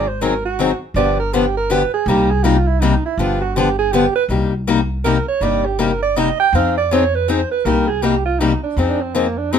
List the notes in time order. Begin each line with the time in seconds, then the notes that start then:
Already playing: G#1
0.08 C5
0.21 D#3 F#3 C4 D#4 G#4 A#4
0.45 F#4
0.59 D#3 F#3 C4 D#4 G#4
0.94 G1 D3 F3 B3 D4 G4 D5
1.20 A#4
1.33 D3 F3 B3 D4 G4
1.57 A#4
1.70 D3 F3 B3 D4 G4 B4
1.94 G#4
2.06 C2 C3 G3 A#3 D#4 G4
2.31 G#4
2.44 C3 G3 A#3 D#4 F4 G4
2.67 E4
2.80 C3 G3 A#3 D#4 G4
3.06 E4
3.17 G1 D3 F3 B3 D4 F4 G4
3.42 F#4
3.56 D3 F3 B3 D4 G4
3.79 G#4
3.92 D3 F3 B3 D4 G4
4.16 B4
4.29 C2 C3 G3 A#3 D#4 G4
4.67 C3 G3 A#3 D#4 G4
5.04 C3 G3 A#3 D#4 G4 A#4
5.29 C#5
5.41 G1 C3 G3 A#3 D#4 G4 D5
5.66 G4
5.79 C3 G3 A#3 D#4 G4 A#4
6.02 D5
6.16 C3 G3 A#3 D#4 G4 D#5
6.40 G5
6.53 F2 F3 C4 D#4 G#4 F5
6.78 D5
6.91 F3 C4 D#4 G#4 C#5
7.15 B4
7.28 F3 C4 D#4 G#4 C5
7.51 B4
7.65 C2 C3 G3 A#3 D#4 G4 A#4
7.88 G#4
8.02 C3 G3 A#3 D#4 G4
8.25 F4
8.39 C3 G3 A#3 D#4 G4
8.63 D4
8.77 F2 F3 C4 D#4 G#4
8.89 D4
9.01 C4
9.15 F3 A#3 C4 D#4 G#4
9.38 D4
9.52 F3 C4 D#4 G#4